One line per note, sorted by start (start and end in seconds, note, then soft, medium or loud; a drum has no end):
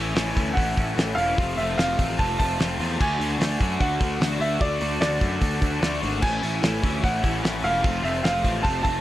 0.00 0.12 A1 medium
0.00 0.13 A2 medium
0.00 0.14 E3 medium
0.00 0.15 A3 medium
0.00 0.15 C#4 medium
0.00 0.15 E4 loud
0.00 0.52 G#5 loud
0.14 0.32 A1 medium
0.14 0.33 A2 medium
0.14 0.34 E3 medium
0.14 0.35 A3 loud
0.14 0.35 C#4 medium
0.14 0.35 E4 medium
0.14 snare loud
0.14 open hi-hat medium
0.34 0.53 D2 medium
0.34 0.54 A2 medium
0.34 0.55 E3 medium
0.34 0.56 A3 loud
0.34 0.56 C#4 medium
0.34 0.56 E4 medium
0.34 kick medium
0.34 open hi-hat medium
0.54 0.73 A1 medium
0.54 0.75 A2 loud
0.54 0.75 E3 loud
0.54 0.77 A3 loud
0.54 0.76 C#4 loud
0.54 0.77 E4 loud
0.54 1.18 F#5 medium
0.54 kick medium
0.58 open hi-hat medium
0.76 0.94 A1 medium
0.76 0.95 A2 medium
0.76 0.96 E3 medium
0.76 0.97 A3 medium
0.76 0.97 C#4 medium
0.76 0.97 E4 loud
0.76 kick medium
0.76 open hi-hat medium
0.96 1.13 A1 loud
0.96 1.15 A2 medium
0.96 1.16 E3 medium
0.96 1.18 A3 loud
0.96 1.17 C#4 loud
0.96 1.17 E4 loud
0.96 snare loud
0.96 open hi-hat medium
1.15 1.33 E1 medium
1.15 1.36 A2 medium
1.15 1.37 E3 loud
1.15 1.37 A3 medium
1.15 1.37 C#4 medium
1.15 1.37 E4 loud
1.15 1.58 F5 loud
1.15 open hi-hat medium
1.36 1.54 F1 loud
1.36 1.57 F2 loud
1.36 1.57 C3 loud
1.36 1.58 F3 medium
1.36 1.59 A3 loud
1.36 1.59 C4 loud
1.36 1.59 F4 loud
1.36 kick loud
1.36 open hi-hat medium
1.57 1.74 F1 medium
1.57 1.76 F2 medium
1.57 1.77 C3 medium
1.57 1.78 F3 medium
1.57 1.79 A3 medium
1.57 1.78 C4 medium
1.57 1.79 F4 medium
1.57 1.78 E5 medium
1.57 open hi-hat medium
1.77 1.94 F1 medium
1.77 1.97 F2 medium
1.77 1.97 C3 medium
1.77 1.98 F3 medium
1.77 1.99 A3 medium
1.77 1.99 C4 loud
1.77 1.99 F4 loud
1.77 2.20 F5 loud
1.77 snare loud
1.77 open hi-hat medium
1.98 2.15 A1 medium
1.98 2.17 F2 loud
1.98 2.17 C3 medium
1.98 2.17 F3 medium
1.98 2.19 A3 medium
1.98 2.19 C4 medium
1.98 2.19 F4 medium
1.98 kick medium
1.98 open hi-hat medium
2.18 2.35 F1 loud
2.18 2.38 F2 loud
2.18 2.39 C3 loud
2.18 2.39 F3 loud
2.18 2.40 A3 loud
2.18 2.39 C4 loud
2.18 2.40 F4 loud
2.18 2.37 A5 loud
2.18 kick medium
2.18 open hi-hat medium
2.39 2.56 F1 medium
2.39 2.58 F2 medium
2.39 2.58 C3 medium
2.39 2.59 F3 medium
2.39 2.60 A3 loud
2.39 2.61 C4 medium
2.39 2.60 F4 medium
2.39 2.76 A5 loud
2.39 kick medium
2.39 open hi-hat medium
2.59 2.76 F1 loud
2.59 2.79 F2 medium
2.59 2.79 C3 medium
2.59 2.80 F3 loud
2.59 2.81 A3 medium
2.59 2.81 C4 loud
2.59 2.81 F4 loud
2.59 snare loud
2.59 open hi-hat medium
2.79 2.96 E2 loud
2.79 2.99 F2 medium
2.79 2.99 C3 medium
2.79 2.99 F3 loud
2.79 3.01 A3 loud
2.79 3.00 C4 loud
2.79 3.00 F4 loud
2.79 open hi-hat medium
3.00 3.17 D2 loud
3.00 3.20 D3 medium
3.00 3.21 A3 loud
3.00 3.22 D4 medium
3.00 3.22 F#4 loud
3.00 3.84 G#5 loud
3.00 kick loud
3.00 crash loud
3.19 3.36 D2 medium
3.19 3.40 D3 medium
3.19 3.40 A3 medium
3.19 3.40 D4 loud
3.19 3.42 F#4 loud
3.19 open hi-hat medium
3.39 3.56 D2 medium
3.39 3.61 D3 medium
3.39 3.61 A3 medium
3.39 3.61 D4 loud
3.39 3.62 F#4 loud
3.39 snare loud
3.39 open hi-hat medium
3.60 3.77 F#2 medium
3.60 3.79 D3 medium
3.60 3.80 A3 medium
3.60 3.80 D4 medium
3.60 3.81 F#4 medium
3.60 kick medium
3.60 open hi-hat medium
3.80 3.97 D2 loud
3.80 3.99 D3 loud
3.80 4.00 A3 loud
3.80 4.00 D4 loud
3.80 4.00 F#4 loud
3.80 4.18 F#5 medium
3.80 kick medium
3.80 open hi-hat medium
4.00 4.17 D2 medium
4.00 4.18 D3 medium
4.00 4.20 A3 medium
4.00 4.19 D4 medium
4.00 4.20 F#4 loud
4.00 kick loud
4.00 open hi-hat medium
4.19 4.37 D2 medium
4.19 4.38 D3 medium
4.19 4.40 A3 loud
4.19 4.40 D4 loud
4.19 4.40 F#4 loud
4.19 snare loud
4.19 open hi-hat medium
4.40 4.57 D2 loud
4.40 4.59 D3 medium
4.40 4.60 A3 medium
4.40 4.60 D4 loud
4.40 4.60 F#4 loud
4.40 4.62 E5 loud
4.40 open hi-hat medium
4.60 4.77 D2 loud
4.60 4.79 D3 loud
4.60 4.81 A3 medium
4.60 4.80 D4 loud
4.60 4.80 F#4 loud
4.60 4.99 D5 loud
4.60 kick loud
4.60 open hi-hat medium
4.80 4.98 D2 medium
4.80 5.00 D3 medium
4.80 5.01 A3 medium
4.80 5.01 D4 medium
4.80 5.01 F#4 medium
4.80 open hi-hat medium
5.01 5.18 D2 medium
5.01 5.20 D3 medium
5.01 5.21 A3 medium
5.01 5.21 D4 medium
5.01 5.21 F#4 medium
5.01 5.98 D5 loud
5.01 snare loud
5.01 open hi-hat medium
5.21 5.38 F#2 medium
5.21 5.39 D3 medium
5.21 5.41 A3 medium
5.21 5.40 D4 loud
5.21 5.41 F#4 loud
5.21 kick medium
5.21 open hi-hat medium
5.40 5.58 D2 loud
5.40 5.60 D3 loud
5.40 5.61 A3 loud
5.40 5.61 D4 loud
5.40 5.61 F#4 loud
5.40 kick loud
5.40 open hi-hat medium
5.61 5.78 D2 medium
5.61 5.79 D3 medium
5.61 5.81 A3 medium
5.61 5.80 D4 medium
5.61 5.80 F#4 loud
5.61 kick medium
5.61 open hi-hat medium
5.80 5.99 D2 loud
5.80 5.99 D3 medium
5.80 6.00 A3 loud
5.80 6.01 D4 medium
5.80 6.01 F#4 loud
5.80 snare loud
5.80 open hi-hat medium
6.00 6.19 G#1 medium
6.00 6.20 D3 medium
6.00 6.21 A3 loud
6.00 6.21 D4 medium
6.00 6.21 F#4 loud
6.00 open hi-hat medium
6.21 6.39 A1 loud
6.21 6.41 A2 loud
6.21 6.41 E3 medium
6.21 6.42 A3 loud
6.21 6.42 C#4 loud
6.21 6.42 E4 loud
6.21 6.99 G#5 loud
6.21 kick loud
6.21 crash loud
6.42 6.59 A1 medium
6.42 6.60 A2 medium
6.42 6.61 E3 medium
6.42 6.62 A3 medium
6.42 6.62 C#4 medium
6.42 6.62 E4 medium
6.42 open hi-hat medium
6.62 6.79 A1 medium
6.62 6.81 A2 medium
6.62 6.82 E3 loud
6.62 6.83 A3 loud
6.62 6.83 C#4 medium
6.62 6.83 E4 loud
6.62 snare loud
6.62 open hi-hat medium
6.82 7.00 D2 medium
6.82 7.00 A2 medium
6.82 7.01 E3 loud
6.82 7.02 A3 medium
6.82 7.02 C#4 loud
6.82 7.02 E4 medium
6.82 kick medium
6.82 open hi-hat medium
7.01 7.20 A1 loud
7.01 7.20 A2 medium
7.01 7.21 E3 loud
7.01 7.22 A3 loud
7.01 7.22 C#4 loud
7.01 7.23 E4 loud
7.01 7.66 F#5 medium
7.01 kick medium
7.01 open hi-hat medium
7.21 7.40 A1 medium
7.21 7.41 A2 medium
7.21 7.41 E3 medium
7.21 7.43 A3 medium
7.21 7.42 C#4 medium
7.21 7.42 E4 medium
7.21 kick medium
7.21 open hi-hat medium
7.42 7.60 A1 loud
7.42 7.62 A2 medium
7.42 7.62 E3 medium
7.42 7.63 A3 loud
7.42 7.63 C#4 loud
7.42 7.63 E4 medium
7.42 snare loud
7.42 open hi-hat medium
7.63 7.80 E1 loud
7.63 7.82 A2 medium
7.63 7.82 E3 medium
7.63 7.83 A3 loud
7.63 7.83 C#4 loud
7.63 7.83 E4 loud
7.63 8.06 F5 loud
7.63 open hi-hat medium
7.82 8.01 F1 loud
7.82 8.00 F2 medium
7.82 8.01 C3 medium
7.82 8.01 F3 medium
7.82 8.03 A3 loud
7.82 8.03 C4 loud
7.82 8.02 F4 loud
7.82 kick loud
7.82 open hi-hat medium
8.01 8.20 F1 medium
8.01 8.21 F2 medium
8.01 8.21 C3 medium
8.01 8.22 F3 medium
8.01 8.23 A3 medium
8.01 8.23 C4 medium
8.01 8.23 F4 medium
8.01 8.25 E5 medium
8.01 open hi-hat medium
8.22 8.41 F1 medium
8.22 8.42 F2 medium
8.22 8.43 C3 medium
8.22 8.43 F3 medium
8.22 8.44 A3 loud
8.22 8.44 C4 loud
8.22 8.44 F4 loud
8.22 8.66 F5 loud
8.22 snare loud
8.22 open hi-hat medium
8.43 8.61 A1 medium
8.43 8.60 F2 medium
8.43 8.62 C3 medium
8.43 8.62 F3 medium
8.43 8.63 A3 medium
8.43 8.62 C4 loud
8.43 8.63 F4 loud
8.43 kick medium
8.43 open hi-hat medium
8.62 8.81 F1 loud
8.62 8.82 F2 loud
8.62 8.83 C3 loud
8.62 8.83 F3 loud
8.62 8.84 A3 loud
8.62 8.84 C4 loud
8.62 8.85 F4 loud
8.62 8.81 A5 loud
8.62 kick medium
8.62 open hi-hat medium
8.83 9.01 F1 medium
8.83 9.01 F2 medium
8.83 9.01 C3 medium
8.83 9.01 F3 medium
8.83 9.01 A3 medium
8.83 9.01 C4 medium
8.83 9.01 F4 medium
8.83 9.01 A5 loud
8.83 kick medium
8.83 open hi-hat medium